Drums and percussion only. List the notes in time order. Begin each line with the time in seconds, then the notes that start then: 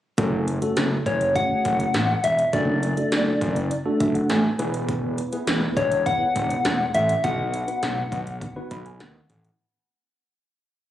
0.18 kick, closed hi-hat
0.48 closed hi-hat
0.62 closed hi-hat
0.77 snare, closed hi-hat
1.06 kick, closed hi-hat
1.21 closed hi-hat
1.36 kick, closed hi-hat
1.65 kick, closed hi-hat
1.80 closed hi-hat
1.94 snare, closed hi-hat
2.24 closed hi-hat
2.39 closed hi-hat
2.53 kick, closed hi-hat
2.83 closed hi-hat
2.97 closed hi-hat
3.12 snare, closed hi-hat
3.41 kick, closed hi-hat
3.56 closed hi-hat
3.71 closed hi-hat
4.00 kick, closed hi-hat
4.15 closed hi-hat
4.30 snare, closed hi-hat
4.59 closed hi-hat
4.74 closed hi-hat
4.89 kick, closed hi-hat
5.18 closed hi-hat
5.33 closed hi-hat
5.47 snare, closed hi-hat
5.77 kick, closed hi-hat
5.92 closed hi-hat
6.06 kick, closed hi-hat
6.36 kick, closed hi-hat
6.50 closed hi-hat
6.65 snare, closed hi-hat
6.94 closed hi-hat
7.09 closed hi-hat
7.24 kick, closed hi-hat
7.54 closed hi-hat
7.68 closed hi-hat
7.83 snare, closed hi-hat
8.12 kick, closed hi-hat
8.27 closed hi-hat
8.41 kick, closed hi-hat
8.71 kick, closed hi-hat
8.86 closed hi-hat
9.00 snare, closed hi-hat
9.30 closed hi-hat
9.45 closed hi-hat